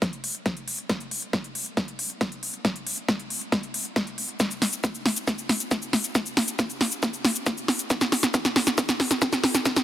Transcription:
0.02 kick, snare, closed hi-hat
0.13 closed hi-hat
0.24 open hi-hat
0.35 closed hi-hat
0.46 kick, snare, closed hi-hat
0.57 closed hi-hat
0.68 open hi-hat
0.79 closed hi-hat
0.89 kick, snare, closed hi-hat
1.00 closed hi-hat
1.11 open hi-hat
1.22 closed hi-hat
1.33 kick, snare, closed hi-hat
1.44 closed hi-hat
1.55 open hi-hat
1.66 closed hi-hat
1.77 kick, snare, closed hi-hat
1.88 closed hi-hat
1.99 open hi-hat
2.10 closed hi-hat
2.21 kick, snare, closed hi-hat
2.32 closed hi-hat
2.43 open hi-hat
2.54 closed hi-hat
2.65 kick, snare, closed hi-hat
2.76 closed hi-hat
2.87 open hi-hat
2.98 closed hi-hat
3.08 kick, snare, closed hi-hat
3.19 closed hi-hat
3.30 open hi-hat
3.41 closed hi-hat
3.52 kick, snare, closed hi-hat
3.63 closed hi-hat
3.74 open hi-hat
3.85 closed hi-hat
3.96 kick, snare, closed hi-hat
4.07 closed hi-hat
4.18 open hi-hat
4.29 closed hi-hat
4.40 kick, snare, closed hi-hat, shaker
4.51 closed hi-hat, shaker
4.62 snare, open hi-hat
4.73 closed hi-hat, shaker
4.84 kick, snare, closed hi-hat, shaker
4.95 closed hi-hat, shaker
5.06 snare, open hi-hat
5.17 closed hi-hat, shaker
5.27 kick, snare, closed hi-hat, shaker
5.38 closed hi-hat, shaker
5.49 snare, open hi-hat
5.60 closed hi-hat, shaker
5.71 kick, snare, closed hi-hat, shaker
5.82 closed hi-hat, shaker
5.93 snare, open hi-hat
6.04 closed hi-hat, shaker
6.15 kick, snare, closed hi-hat, shaker
6.26 closed hi-hat, shaker
6.37 snare, open hi-hat
6.48 closed hi-hat, shaker
6.59 kick, snare, closed hi-hat, shaker
6.70 closed hi-hat, shaker
6.81 snare, open hi-hat
6.92 closed hi-hat, shaker
7.03 kick, snare, closed hi-hat, shaker
7.14 closed hi-hat, shaker
7.25 snare, open hi-hat
7.36 closed hi-hat, shaker
7.46 kick, snare, closed hi-hat, shaker
7.57 closed hi-hat, shaker
7.68 snare, open hi-hat
7.79 closed hi-hat, shaker
7.90 kick, snare, closed hi-hat, shaker
8.01 snare, closed hi-hat, shaker
8.12 snare, open hi-hat
8.23 snare, shaker
8.34 kick, snare, closed hi-hat, shaker
8.45 snare, closed hi-hat, shaker
8.56 snare, open hi-hat
8.67 snare, shaker
8.78 kick, snare, closed hi-hat, shaker
8.89 snare, closed hi-hat, shaker
9.00 snare, open hi-hat
9.11 snare, shaker
9.22 kick, snare, closed hi-hat, shaker
9.33 snare, closed hi-hat, shaker
9.44 snare, open hi-hat
9.55 snare, closed hi-hat, shaker
9.65 kick, snare, closed hi-hat, shaker
9.76 snare, closed hi-hat, shaker

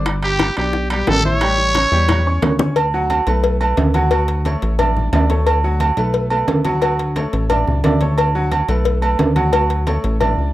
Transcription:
Already playing: G1 D4 D5 D6
0.06 high bongo, high conga, high timbale
0.23 G4 G5 G6, high conga, high timbale
0.39 high bongo, high conga, high timbale, low timbale
0.57 B1 D4 G4 D5 D6, high conga, high timbale
0.73 high bongo, high conga
0.90 G3 G4 G5, high conga, high timbale
1.07 A1 A4, high bongo, low bongo, high conga, high timbale, low timbale
1.24 E4 C#5 E5 E6, high conga
1.41 G3 G4 G5, high bongo, high timbale
1.58 high bongo, high conga
1.75 C#4 C#5 C#6, high bongo, high conga, high timbale, low timbale
1.92 E2 G3 G4 G5, high bongo, high conga
2.08 high bongo, high conga, low conga, high timbale
2.26 C#4 C#5 C#6, high conga
2.42 D2, low bongo, high conga, high timbale, low timbale
2.59 C#4 C#5 C#6, low bongo, high conga
2.76 cowbell, high conga, low agogo
2.93 F#3 F#4 F#5, high conga
3.10 cowbell, high conga, low timbale, low agogo
3.27 B1 A3 A4 B4, cowbell, high conga, low agogo
3.44 cowbell, high conga
3.61 A3 A4 B4, high conga, low agogo
3.77 D2, cowbell, high conga, low timbale
3.94 F#3 F#4 F#5, cowbell, high conga, low agogo
4.11 F#3 F#4 F#5, cowbell, high conga, low agogo
4.28 cowbell, high conga
4.45 A3 A4 C#5, cowbell, high conga, low timbale, low agogo
4.62 A1, cowbell, high conga
4.79 D4 D5 E5, cowbell, high conga, low conga, low agogo
4.96 high conga, low conga
5.13 D2 D4 D5 E5, cowbell, high conga, low timbale, low agogo
5.30 A3 A4 C#5, cowbell, high conga
5.47 cowbell, low agogo
5.63 F#3 F#4 F#5, high conga
5.80 cowbell, high conga, low timbale, low agogo
5.97 B1 A3 A4 B4, cowbell, high conga, low agogo
6.14 cowbell, high conga
6.30 A3 A4 B4, high conga, low agogo
6.48 D2, cowbell, high conga, low timbale
6.65 F#3 F#4 F#5, cowbell, high conga, low agogo
6.82 F#3 F#4 F#5, cowbell, low agogo
6.99 cowbell, high conga
7.16 A3 A4 C#5, cowbell, high conga, low timbale, low agogo
7.33 A1, cowbell, high conga
7.50 D4 D5 E5, cowbell, high conga, low conga, low agogo
7.67 C#2, high conga, low conga
7.84 D2 D4 D5 E5, cowbell, high conga, low timbale, low agogo
8.01 A3 A4 C#5, cowbell, high conga
8.18 cowbell, low agogo
8.35 F#3 F#4 F#5, high conga
8.52 cowbell, high conga, low timbale, low agogo
8.68 B1 A3 A4 B4, cowbell, high conga, low agogo
8.85 cowbell, high conga
9.02 A3 A4 B4, high conga, low agogo
9.19 D2, cowbell, high conga, low timbale
9.36 F#3 F#4 F#5, cowbell, high conga, low agogo
9.53 F#3 F#4 F#5, cowbell, low agogo
9.70 cowbell, high conga
9.87 A3 A4 C#5, cowbell, high conga, low timbale, low agogo
10.04 A1, cowbell, high conga
10.20 D4 D5 E5, cowbell, high conga, low conga, low agogo
10.38 C#2, high conga

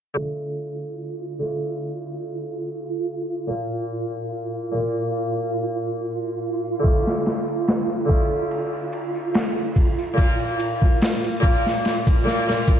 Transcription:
0.14 D3 A3
0.19 F4
0.82 tambourine
1.01 tambourine
1.24 tambourine
1.39 D3 A3
1.44 F4 D5
1.85 tambourine
2.49 tambourine
2.68 tambourine
2.91 tambourine
3.32 tambourine
3.47 A#2 A#3, tambourine
3.52 F4 F5
3.74 tambourine
4.15 tambourine
4.35 tambourine
4.58 tambourine
4.72 A#2 A#3
4.77 F4 D5
4.99 tambourine
5.18 tambourine
5.40 tambourine
5.81 tambourine
6.01 tambourine
6.24 tambourine
6.65 tambourine
6.80 D3 A3
6.84 F4 D5, kick, ride, tambourine
7.06 snare, tambourine
7.26 snare, ride
7.48 ride, tambourine
7.67 snare, ride, tambourine
7.91 tambourine
8.06 D3 A3, kick, ride
8.11 F4 D5
8.32 tambourine
8.51 ride, tambourine
8.75 tambourine
8.93 ride
9.15 tambourine
9.34 snare, ride, tambourine
9.58 tambourine
9.76 kick, ride
9.99 tambourine
10.14 A#2 A#3, kick
10.18 F4 F5, ride, tambourine
10.41 tambourine
10.60 ride
10.82 kick, tambourine
11.02 snare, open hi-hat, tambourine
11.24 ride, tambourine
11.40 A#2 A#3 F4 D5, kick, ride
11.66 snare, tambourine
11.85 snare, ride, tambourine
12.07 kick, ride, tambourine
12.24 A#2 A#3 F4 D5, snare
12.47 A#2 A#3 F4 D5, snare, ride, tambourine
12.68 kick, ride, tambourine

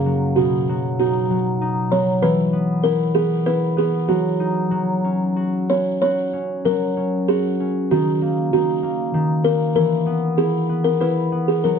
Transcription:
Already playing: F#2 C#3 A#3 D#4 G#4
0.06 F#3
0.36 B2 F#4
0.69 F#3
1.00 D#4 F#4
1.30 F#3
1.61 D#4
1.92 F#3 C#5
2.22 E3 B4
2.53 B3
2.84 E4 A#4
3.15 B3 G#4
3.46 E4 B4
3.77 B3 G#4
4.08 F#3 F#4
4.40 D#4
4.71 F#3
5.04 C#4
5.36 F#4
5.69 C#4 C#5
6.01 F#4 C#5
6.33 C#4
6.65 F#3 A#4
6.97 C#4
7.28 F#4 G#4
7.60 C#4
7.91 D#3 F#4
8.22 A#3
8.53 D#3 F#4
8.83 A#3
9.14 D#3
9.44 A#3 A#4
9.75 E3 A#4
10.06 B3
10.37 E4 G#4
10.69 B3
10.84 A#4
11.00 E4 B4
11.32 B3
11.48 G#4
11.64 F#3 A#4

